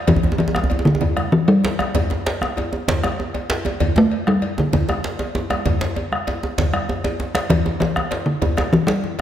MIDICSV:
0, 0, Header, 1, 5, 480
1, 0, Start_track
1, 0, Tempo, 310398
1, 121, Time_signature, 12, 3, 24, 8
1, 7320, Tempo, 306905
1, 14323, End_track
2, 0, Start_track
2, 0, Title_t, "Talking drum"
2, 0, Program_c, 0, 116
2, 122, Note_on_c, 0, 52, 93
2, 570, Note_off_c, 0, 52, 0
2, 594, Note_on_c, 0, 52, 89
2, 1270, Note_off_c, 0, 52, 0
2, 1318, Note_on_c, 0, 50, 98
2, 2046, Note_on_c, 0, 52, 93
2, 2069, Note_off_c, 0, 50, 0
2, 2290, Note_on_c, 0, 55, 102
2, 2313, Note_off_c, 0, 52, 0
2, 2830, Note_off_c, 0, 55, 0
2, 6151, Note_on_c, 0, 57, 110
2, 6615, Note_on_c, 0, 55, 108
2, 6638, Note_off_c, 0, 57, 0
2, 7105, Note_on_c, 0, 50, 93
2, 7128, Note_off_c, 0, 55, 0
2, 7311, Note_off_c, 0, 50, 0
2, 7320, Note_on_c, 0, 50, 88
2, 8463, Note_off_c, 0, 50, 0
2, 11642, Note_on_c, 0, 52, 96
2, 12092, Note_off_c, 0, 52, 0
2, 12119, Note_on_c, 0, 52, 94
2, 12834, Note_on_c, 0, 50, 91
2, 12857, Note_off_c, 0, 52, 0
2, 13566, Note_on_c, 0, 52, 97
2, 13589, Note_off_c, 0, 50, 0
2, 13788, Note_on_c, 0, 55, 104
2, 13811, Note_off_c, 0, 52, 0
2, 14323, Note_off_c, 0, 55, 0
2, 14323, End_track
3, 0, Start_track
3, 0, Title_t, "Bombo"
3, 116, Note_on_c, 9, 43, 107
3, 270, Note_off_c, 9, 43, 0
3, 845, Note_on_c, 9, 37, 83
3, 1000, Note_off_c, 9, 37, 0
3, 1566, Note_on_c, 9, 43, 104
3, 1720, Note_off_c, 9, 43, 0
3, 1803, Note_on_c, 9, 37, 83
3, 1958, Note_off_c, 9, 37, 0
3, 2284, Note_on_c, 9, 37, 34
3, 2439, Note_off_c, 9, 37, 0
3, 2769, Note_on_c, 9, 37, 86
3, 2924, Note_off_c, 9, 37, 0
3, 3012, Note_on_c, 9, 43, 97
3, 3167, Note_off_c, 9, 43, 0
3, 3739, Note_on_c, 9, 37, 81
3, 3893, Note_off_c, 9, 37, 0
3, 4462, Note_on_c, 9, 43, 95
3, 4616, Note_off_c, 9, 43, 0
3, 4693, Note_on_c, 9, 37, 79
3, 4848, Note_off_c, 9, 37, 0
3, 5181, Note_on_c, 9, 37, 34
3, 5336, Note_off_c, 9, 37, 0
3, 5887, Note_on_c, 9, 43, 96
3, 6042, Note_off_c, 9, 43, 0
3, 6604, Note_on_c, 9, 37, 79
3, 6758, Note_off_c, 9, 37, 0
3, 7324, Note_on_c, 9, 43, 98
3, 7481, Note_off_c, 9, 43, 0
3, 7572, Note_on_c, 9, 37, 77
3, 7728, Note_off_c, 9, 37, 0
3, 8057, Note_on_c, 9, 37, 36
3, 8214, Note_off_c, 9, 37, 0
3, 8527, Note_on_c, 9, 37, 84
3, 8683, Note_off_c, 9, 37, 0
3, 8774, Note_on_c, 9, 43, 99
3, 8930, Note_off_c, 9, 43, 0
3, 9497, Note_on_c, 9, 37, 86
3, 9654, Note_off_c, 9, 37, 0
3, 9742, Note_on_c, 9, 37, 34
3, 9898, Note_off_c, 9, 37, 0
3, 9982, Note_on_c, 9, 37, 34
3, 10138, Note_off_c, 9, 37, 0
3, 10214, Note_on_c, 9, 37, 34
3, 10214, Note_on_c, 9, 43, 102
3, 10371, Note_off_c, 9, 37, 0
3, 10371, Note_off_c, 9, 43, 0
3, 10451, Note_on_c, 9, 37, 85
3, 10607, Note_off_c, 9, 37, 0
3, 10694, Note_on_c, 9, 37, 39
3, 10851, Note_off_c, 9, 37, 0
3, 11408, Note_on_c, 9, 37, 93
3, 11564, Note_off_c, 9, 37, 0
3, 11643, Note_on_c, 9, 43, 109
3, 11799, Note_off_c, 9, 43, 0
3, 12368, Note_on_c, 9, 37, 91
3, 12525, Note_off_c, 9, 37, 0
3, 13087, Note_on_c, 9, 43, 109
3, 13244, Note_off_c, 9, 43, 0
3, 13328, Note_on_c, 9, 37, 82
3, 13485, Note_off_c, 9, 37, 0
3, 13818, Note_on_c, 9, 37, 35
3, 13974, Note_off_c, 9, 37, 0
3, 14323, End_track
4, 0, Start_track
4, 0, Title_t, "Djembe"
4, 120, Note_on_c, 9, 64, 83
4, 128, Note_on_c, 9, 63, 106
4, 254, Note_off_c, 9, 64, 0
4, 254, Note_on_c, 9, 64, 84
4, 283, Note_off_c, 9, 63, 0
4, 362, Note_on_c, 9, 62, 67
4, 362, Note_on_c, 9, 63, 66
4, 371, Note_off_c, 9, 64, 0
4, 371, Note_on_c, 9, 64, 87
4, 492, Note_off_c, 9, 63, 0
4, 492, Note_on_c, 9, 63, 90
4, 516, Note_off_c, 9, 62, 0
4, 525, Note_off_c, 9, 64, 0
4, 620, Note_off_c, 9, 63, 0
4, 620, Note_on_c, 9, 63, 88
4, 738, Note_off_c, 9, 63, 0
4, 738, Note_on_c, 9, 63, 88
4, 864, Note_off_c, 9, 63, 0
4, 864, Note_on_c, 9, 63, 110
4, 984, Note_on_c, 9, 64, 90
4, 1019, Note_off_c, 9, 63, 0
4, 1094, Note_on_c, 9, 63, 77
4, 1103, Note_off_c, 9, 64, 0
4, 1103, Note_on_c, 9, 64, 80
4, 1223, Note_off_c, 9, 63, 0
4, 1223, Note_on_c, 9, 63, 86
4, 1258, Note_off_c, 9, 64, 0
4, 1350, Note_off_c, 9, 63, 0
4, 1350, Note_on_c, 9, 63, 84
4, 1466, Note_off_c, 9, 63, 0
4, 1466, Note_on_c, 9, 63, 80
4, 1573, Note_on_c, 9, 64, 80
4, 1620, Note_off_c, 9, 63, 0
4, 1728, Note_off_c, 9, 64, 0
4, 1811, Note_on_c, 9, 62, 62
4, 1811, Note_on_c, 9, 63, 64
4, 1965, Note_off_c, 9, 62, 0
4, 1965, Note_off_c, 9, 63, 0
4, 2288, Note_on_c, 9, 62, 26
4, 2443, Note_off_c, 9, 62, 0
4, 2529, Note_on_c, 9, 63, 80
4, 2545, Note_on_c, 9, 62, 101
4, 2684, Note_off_c, 9, 63, 0
4, 2699, Note_off_c, 9, 62, 0
4, 2789, Note_on_c, 9, 63, 82
4, 2943, Note_off_c, 9, 63, 0
4, 3008, Note_on_c, 9, 64, 89
4, 3021, Note_on_c, 9, 63, 92
4, 3163, Note_off_c, 9, 64, 0
4, 3176, Note_off_c, 9, 63, 0
4, 3248, Note_on_c, 9, 62, 68
4, 3248, Note_on_c, 9, 63, 68
4, 3262, Note_off_c, 9, 63, 0
4, 3262, Note_on_c, 9, 63, 85
4, 3403, Note_off_c, 9, 62, 0
4, 3416, Note_off_c, 9, 63, 0
4, 3502, Note_on_c, 9, 62, 104
4, 3657, Note_off_c, 9, 62, 0
4, 3753, Note_on_c, 9, 63, 85
4, 3908, Note_off_c, 9, 63, 0
4, 3972, Note_on_c, 9, 63, 85
4, 3990, Note_off_c, 9, 63, 0
4, 3990, Note_on_c, 9, 63, 83
4, 4145, Note_off_c, 9, 63, 0
4, 4216, Note_on_c, 9, 63, 81
4, 4370, Note_off_c, 9, 63, 0
4, 4456, Note_on_c, 9, 64, 85
4, 4462, Note_on_c, 9, 62, 105
4, 4610, Note_off_c, 9, 64, 0
4, 4616, Note_off_c, 9, 62, 0
4, 4692, Note_on_c, 9, 62, 62
4, 4692, Note_on_c, 9, 63, 69
4, 4705, Note_off_c, 9, 63, 0
4, 4705, Note_on_c, 9, 63, 93
4, 4847, Note_off_c, 9, 62, 0
4, 4860, Note_off_c, 9, 63, 0
4, 4942, Note_on_c, 9, 63, 77
4, 5097, Note_off_c, 9, 63, 0
4, 5172, Note_on_c, 9, 62, 29
4, 5173, Note_on_c, 9, 63, 85
4, 5327, Note_off_c, 9, 62, 0
4, 5328, Note_off_c, 9, 63, 0
4, 5408, Note_on_c, 9, 62, 111
4, 5412, Note_on_c, 9, 63, 90
4, 5563, Note_off_c, 9, 62, 0
4, 5566, Note_off_c, 9, 63, 0
4, 5656, Note_on_c, 9, 63, 90
4, 5810, Note_off_c, 9, 63, 0
4, 5880, Note_on_c, 9, 63, 84
4, 5891, Note_on_c, 9, 64, 93
4, 6035, Note_off_c, 9, 63, 0
4, 6046, Note_off_c, 9, 64, 0
4, 6122, Note_on_c, 9, 63, 91
4, 6128, Note_off_c, 9, 63, 0
4, 6128, Note_on_c, 9, 62, 69
4, 6128, Note_on_c, 9, 63, 72
4, 6283, Note_off_c, 9, 62, 0
4, 6283, Note_off_c, 9, 63, 0
4, 6834, Note_on_c, 9, 63, 81
4, 6989, Note_off_c, 9, 63, 0
4, 7083, Note_on_c, 9, 63, 104
4, 7237, Note_off_c, 9, 63, 0
4, 7312, Note_on_c, 9, 64, 92
4, 7318, Note_on_c, 9, 63, 81
4, 7468, Note_off_c, 9, 64, 0
4, 7475, Note_off_c, 9, 63, 0
4, 7559, Note_on_c, 9, 63, 87
4, 7560, Note_on_c, 9, 62, 67
4, 7715, Note_off_c, 9, 63, 0
4, 7717, Note_off_c, 9, 62, 0
4, 7803, Note_on_c, 9, 62, 75
4, 7960, Note_off_c, 9, 62, 0
4, 8037, Note_on_c, 9, 63, 90
4, 8043, Note_on_c, 9, 62, 31
4, 8194, Note_off_c, 9, 63, 0
4, 8199, Note_off_c, 9, 62, 0
4, 8284, Note_on_c, 9, 63, 105
4, 8440, Note_off_c, 9, 63, 0
4, 8525, Note_on_c, 9, 63, 91
4, 8681, Note_off_c, 9, 63, 0
4, 8761, Note_on_c, 9, 63, 86
4, 8766, Note_on_c, 9, 64, 86
4, 8917, Note_off_c, 9, 63, 0
4, 8923, Note_off_c, 9, 64, 0
4, 9006, Note_on_c, 9, 62, 84
4, 9009, Note_off_c, 9, 62, 0
4, 9009, Note_on_c, 9, 62, 66
4, 9009, Note_on_c, 9, 63, 71
4, 9165, Note_off_c, 9, 62, 0
4, 9165, Note_off_c, 9, 63, 0
4, 9244, Note_on_c, 9, 63, 79
4, 9250, Note_on_c, 9, 62, 25
4, 9400, Note_off_c, 9, 63, 0
4, 9406, Note_off_c, 9, 62, 0
4, 9492, Note_on_c, 9, 62, 25
4, 9648, Note_off_c, 9, 62, 0
4, 9729, Note_on_c, 9, 63, 78
4, 9733, Note_off_c, 9, 63, 0
4, 9733, Note_on_c, 9, 63, 103
4, 9889, Note_off_c, 9, 63, 0
4, 9978, Note_on_c, 9, 63, 89
4, 10134, Note_off_c, 9, 63, 0
4, 10209, Note_on_c, 9, 62, 26
4, 10209, Note_on_c, 9, 64, 85
4, 10212, Note_off_c, 9, 62, 0
4, 10212, Note_on_c, 9, 62, 82
4, 10365, Note_off_c, 9, 64, 0
4, 10368, Note_off_c, 9, 62, 0
4, 10447, Note_on_c, 9, 64, 49
4, 10604, Note_off_c, 9, 64, 0
4, 10697, Note_on_c, 9, 64, 50
4, 10698, Note_on_c, 9, 63, 84
4, 10853, Note_off_c, 9, 64, 0
4, 10854, Note_off_c, 9, 63, 0
4, 10931, Note_on_c, 9, 64, 63
4, 10935, Note_on_c, 9, 63, 107
4, 11088, Note_off_c, 9, 64, 0
4, 11092, Note_off_c, 9, 63, 0
4, 11173, Note_on_c, 9, 63, 85
4, 11175, Note_on_c, 9, 62, 62
4, 11329, Note_off_c, 9, 63, 0
4, 11332, Note_off_c, 9, 62, 0
4, 11414, Note_on_c, 9, 62, 85
4, 11418, Note_off_c, 9, 62, 0
4, 11418, Note_on_c, 9, 62, 64
4, 11574, Note_off_c, 9, 62, 0
4, 11653, Note_on_c, 9, 64, 75
4, 11809, Note_off_c, 9, 64, 0
4, 11892, Note_on_c, 9, 62, 60
4, 11892, Note_on_c, 9, 63, 60
4, 11897, Note_off_c, 9, 63, 0
4, 11897, Note_on_c, 9, 63, 85
4, 12049, Note_off_c, 9, 62, 0
4, 12053, Note_off_c, 9, 63, 0
4, 12142, Note_on_c, 9, 63, 111
4, 12299, Note_off_c, 9, 63, 0
4, 12380, Note_on_c, 9, 63, 86
4, 12536, Note_off_c, 9, 63, 0
4, 12605, Note_on_c, 9, 63, 74
4, 12611, Note_on_c, 9, 62, 83
4, 12762, Note_off_c, 9, 63, 0
4, 12767, Note_off_c, 9, 62, 0
4, 13082, Note_on_c, 9, 64, 71
4, 13090, Note_on_c, 9, 63, 83
4, 13238, Note_off_c, 9, 64, 0
4, 13246, Note_off_c, 9, 63, 0
4, 13321, Note_on_c, 9, 62, 54
4, 13321, Note_on_c, 9, 63, 57
4, 13337, Note_off_c, 9, 63, 0
4, 13337, Note_on_c, 9, 63, 119
4, 13477, Note_off_c, 9, 62, 0
4, 13494, Note_off_c, 9, 63, 0
4, 13577, Note_on_c, 9, 63, 82
4, 13734, Note_off_c, 9, 63, 0
4, 13809, Note_on_c, 9, 62, 85
4, 13810, Note_off_c, 9, 62, 0
4, 13810, Note_on_c, 9, 62, 24
4, 13966, Note_off_c, 9, 62, 0
4, 14049, Note_on_c, 9, 63, 69
4, 14206, Note_off_c, 9, 63, 0
4, 14323, End_track
5, 0, Start_track
5, 0, Title_t, "Drums"
5, 116, Note_on_c, 9, 56, 64
5, 120, Note_on_c, 9, 63, 27
5, 120, Note_on_c, 9, 64, 91
5, 271, Note_off_c, 9, 56, 0
5, 275, Note_off_c, 9, 63, 0
5, 275, Note_off_c, 9, 64, 0
5, 595, Note_on_c, 9, 56, 48
5, 749, Note_off_c, 9, 56, 0
5, 843, Note_on_c, 9, 63, 67
5, 997, Note_off_c, 9, 63, 0
5, 1079, Note_on_c, 9, 56, 50
5, 1234, Note_off_c, 9, 56, 0
5, 1559, Note_on_c, 9, 64, 85
5, 1569, Note_on_c, 9, 56, 49
5, 1714, Note_off_c, 9, 64, 0
5, 1724, Note_off_c, 9, 56, 0
5, 1801, Note_on_c, 9, 56, 47
5, 1805, Note_on_c, 9, 63, 66
5, 1956, Note_off_c, 9, 56, 0
5, 1960, Note_off_c, 9, 63, 0
5, 2285, Note_on_c, 9, 56, 45
5, 2440, Note_off_c, 9, 56, 0
5, 2769, Note_on_c, 9, 56, 51
5, 2771, Note_on_c, 9, 63, 62
5, 2924, Note_off_c, 9, 56, 0
5, 2926, Note_off_c, 9, 63, 0
5, 3011, Note_on_c, 9, 63, 25
5, 3011, Note_on_c, 9, 64, 82
5, 3018, Note_on_c, 9, 56, 65
5, 3165, Note_off_c, 9, 63, 0
5, 3165, Note_off_c, 9, 64, 0
5, 3173, Note_off_c, 9, 56, 0
5, 3499, Note_on_c, 9, 56, 48
5, 3654, Note_off_c, 9, 56, 0
5, 3733, Note_on_c, 9, 63, 62
5, 3887, Note_off_c, 9, 63, 0
5, 3981, Note_on_c, 9, 56, 52
5, 4136, Note_off_c, 9, 56, 0
5, 4454, Note_on_c, 9, 56, 47
5, 4454, Note_on_c, 9, 64, 79
5, 4608, Note_off_c, 9, 56, 0
5, 4609, Note_off_c, 9, 64, 0
5, 4694, Note_on_c, 9, 56, 49
5, 4696, Note_on_c, 9, 63, 64
5, 4849, Note_off_c, 9, 56, 0
5, 4851, Note_off_c, 9, 63, 0
5, 5172, Note_on_c, 9, 56, 48
5, 5326, Note_off_c, 9, 56, 0
5, 5643, Note_on_c, 9, 63, 64
5, 5650, Note_on_c, 9, 56, 53
5, 5797, Note_off_c, 9, 63, 0
5, 5805, Note_off_c, 9, 56, 0
5, 5883, Note_on_c, 9, 56, 69
5, 5884, Note_on_c, 9, 63, 27
5, 5884, Note_on_c, 9, 64, 86
5, 6038, Note_off_c, 9, 56, 0
5, 6038, Note_off_c, 9, 63, 0
5, 6038, Note_off_c, 9, 64, 0
5, 6363, Note_on_c, 9, 56, 47
5, 6518, Note_off_c, 9, 56, 0
5, 6604, Note_on_c, 9, 63, 60
5, 6759, Note_off_c, 9, 63, 0
5, 6838, Note_on_c, 9, 56, 53
5, 6993, Note_off_c, 9, 56, 0
5, 7318, Note_on_c, 9, 56, 48
5, 7319, Note_on_c, 9, 64, 80
5, 7475, Note_off_c, 9, 56, 0
5, 7475, Note_off_c, 9, 64, 0
5, 7560, Note_on_c, 9, 63, 67
5, 7564, Note_on_c, 9, 56, 46
5, 7716, Note_off_c, 9, 63, 0
5, 7720, Note_off_c, 9, 56, 0
5, 8038, Note_on_c, 9, 56, 45
5, 8194, Note_off_c, 9, 56, 0
5, 8520, Note_on_c, 9, 63, 65
5, 8522, Note_on_c, 9, 56, 52
5, 8677, Note_off_c, 9, 63, 0
5, 8678, Note_off_c, 9, 56, 0
5, 8763, Note_on_c, 9, 56, 62
5, 8767, Note_on_c, 9, 64, 83
5, 8919, Note_off_c, 9, 56, 0
5, 8923, Note_off_c, 9, 64, 0
5, 9243, Note_on_c, 9, 56, 46
5, 9254, Note_on_c, 9, 63, 25
5, 9399, Note_off_c, 9, 56, 0
5, 9410, Note_off_c, 9, 63, 0
5, 9488, Note_on_c, 9, 63, 60
5, 9645, Note_off_c, 9, 63, 0
5, 9727, Note_on_c, 9, 56, 47
5, 9883, Note_off_c, 9, 56, 0
5, 10208, Note_on_c, 9, 56, 54
5, 10211, Note_on_c, 9, 64, 78
5, 10365, Note_off_c, 9, 56, 0
5, 10368, Note_off_c, 9, 64, 0
5, 10446, Note_on_c, 9, 63, 66
5, 10450, Note_on_c, 9, 56, 53
5, 10603, Note_off_c, 9, 63, 0
5, 10606, Note_off_c, 9, 56, 0
5, 10690, Note_on_c, 9, 63, 26
5, 10847, Note_off_c, 9, 63, 0
5, 10932, Note_on_c, 9, 56, 53
5, 10933, Note_on_c, 9, 63, 23
5, 11089, Note_off_c, 9, 56, 0
5, 11090, Note_off_c, 9, 63, 0
5, 11405, Note_on_c, 9, 63, 62
5, 11416, Note_on_c, 9, 56, 60
5, 11561, Note_off_c, 9, 63, 0
5, 11573, Note_off_c, 9, 56, 0
5, 11649, Note_on_c, 9, 63, 26
5, 11649, Note_on_c, 9, 64, 82
5, 11652, Note_on_c, 9, 56, 78
5, 11805, Note_off_c, 9, 63, 0
5, 11805, Note_off_c, 9, 64, 0
5, 11808, Note_off_c, 9, 56, 0
5, 12122, Note_on_c, 9, 56, 56
5, 12279, Note_off_c, 9, 56, 0
5, 12367, Note_on_c, 9, 63, 60
5, 12524, Note_off_c, 9, 63, 0
5, 12598, Note_on_c, 9, 56, 53
5, 12755, Note_off_c, 9, 56, 0
5, 13081, Note_on_c, 9, 56, 53
5, 13086, Note_on_c, 9, 64, 85
5, 13237, Note_off_c, 9, 56, 0
5, 13242, Note_off_c, 9, 64, 0
5, 13323, Note_on_c, 9, 56, 55
5, 13329, Note_on_c, 9, 63, 62
5, 13479, Note_off_c, 9, 56, 0
5, 13485, Note_off_c, 9, 63, 0
5, 13810, Note_on_c, 9, 56, 52
5, 13966, Note_off_c, 9, 56, 0
5, 14323, End_track
0, 0, End_of_file